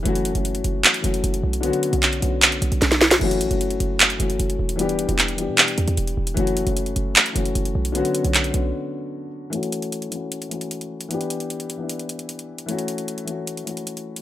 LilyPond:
<<
  \new Staff \with { instrumentName = "Grand piano" } { \time 4/4 \key fis \phrygian \tempo 4 = 152 <e fis a cis' fis'>8. <e fis a cis' fis'>4. r16 <e fis a cis' fis'>4~ <e fis a cis' fis'>16 r16 | <d fis b cis' fis'>8. <d fis b cis' fis'>8. <d fis b cis' fis'>4.~ <d fis b cis' fis'>16 r8. | <e fis a cis' fis'>8. <e fis a cis' fis'>4. r16 <e fis a cis' fis'>4~ <e fis a cis' fis'>16 r16 | <e g b d' g'>8. <e g b d' g'>8. <e g b d' g'>4.~ <e g b d' g'>16 r8. |
<e fis a cis' fis'>8. <e fis a cis' fis'>4. r16 <e fis a cis' fis'>4~ <e fis a cis' fis'>16 r16 | <d fis b cis' fis'>8. <d fis b cis' fis'>8. <d fis b cis' fis'>4.~ <d fis b cis' fis'>16 r8. | <e a cis' fis'>4~ <e a cis' fis'>16 r16 <e a cis' fis'>4 <e a cis' fis'>4~ <e a cis' fis'>16 r16 | <e b d' g'>4. r16 <e b d' e'>4.~ <e b d' e'>16 r8 |
<e a cis' fis'>4~ <e a cis' fis'>16 r16 <e a cis' fis'>4 <e a cis' fis'>4~ <e a cis' fis'>16 r16 | }
  \new Staff \with { instrumentName = "808-style bass" } { \clef bass \time 4/4 \key fis \phrygian fis,,8. fis,,8. fis,,8 r8 fis,,8 fis,,8 b,,8~ | b,,16 r8 b,,8. b,,4 b,,16 b,,16 b,,4 | fis,,8 a,,16 fis,,8. fis,,4 fis,,8 fis,,8 e,,8~ | e,,8. e,,4 b,8. e,16 e,16 e,,8 e,,8 |
fis,,8. fis,,8. fis,,8 r8 fis,,8 fis,,8 b,,8~ | b,,16 r8 b,,8. b,,8 r2 | r1 | r1 |
r1 | }
  \new DrumStaff \with { instrumentName = "Drums" } \drummode { \time 4/4 hh16 hh16 hh16 hh16 hh16 hh16 hh8 <hc hh>16 hh16 hh16 hh16 hh16 hh8 hh16 | hh16 hh16 hh16 hh16 <hc hh>16 hh16 hh8 <hc hh>16 hh16 hh16 hh16 <hh sn>16 <hh sn>16 sn16 <hh sn>16 | cymc16 hh16 hh16 hh16 hh16 hh16 hh8 <hc hh>16 hh16 hh16 hh16 hh16 hh8 hh16 | hh16 hh16 hh16 hh16 <hc hh>16 hh16 hh8 <hc hh>16 hh16 hh16 hh16 hh16 hh8 hh16 |
hh16 hh16 hh16 hh16 hh16 hh16 hh8 <hc hh>16 hh16 hh16 hh16 hh16 hh8 hh16 | hh16 hh16 hh16 hh16 <hc hh>16 hh16 hh8 r4 r4 | hh16 hh16 hh16 hh16 hh16 hh16 hh8 hh16 hh16 hh16 hh16 hh16 hh8 hh16 | hh16 hh16 hh16 hh16 hh16 hh16 hh8 hh16 hh16 hh16 hh16 hh16 hh8 hh16 |
hh16 hh16 hh16 hh16 hh16 hh16 hh8 hh16 hh16 hh16 hh16 hh16 hh8 hh16 | }
>>